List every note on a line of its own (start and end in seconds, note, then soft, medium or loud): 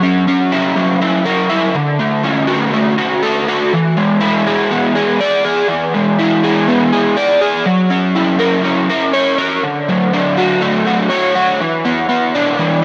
0.00 0.75 F#3 medium
0.00 0.26 C#4 medium
0.27 1.51 C#4 medium
0.52 1.00 E4 medium
0.76 1.75 F#3 medium
1.01 1.48 E4 medium
1.25 1.75 A#4 medium
1.50 1.75 E4 medium
1.75 2.98 D3 medium
2.00 2.72 A3 medium
2.24 3.47 C#4 medium
2.47 2.97 F#4 medium
2.73 3.72 A3 medium
2.98 3.47 F#4 medium
3.23 3.72 A4 medium
3.48 3.73 F#4 medium
3.73 5.23 E3 medium
3.97 5.20 G#3 medium
4.21 6.18 E4 medium
4.46 4.94 G#4 medium
4.71 5.94 B3 medium
4.95 5.43 G#4 medium
5.20 6.43 D5 medium
5.45 6.42 G#4 medium
5.68 6.92 E3 medium
5.94 7.17 G#3 medium
6.19 7.42 E4 medium
6.44 6.92 G#4 medium
6.68 7.66 B3 medium
6.93 7.40 G#4 medium
7.17 7.66 D5 medium
7.41 7.66 G#4 medium
7.66 8.89 F#3 medium
7.91 8.64 C#4 medium
8.16 9.39 E4 medium
8.39 8.88 A#4 medium
8.65 9.64 C#4 medium
8.90 9.37 A#4 medium
9.13 9.63 C#5 medium
9.38 9.63 A#4 medium
9.63 10.87 D3 medium
9.88 11.11 F#3 medium
10.13 11.64 D4 medium
10.38 10.85 F#4 medium
10.62 11.61 A3 medium
10.87 11.34 F#4 medium
11.10 11.60 C#5 medium
11.35 11.60 F#4 medium
11.61 12.58 E3 medium
11.85 12.08 B3 medium
12.09 12.85 B3 medium
12.35 12.81 D4 medium
12.59 12.85 E3 medium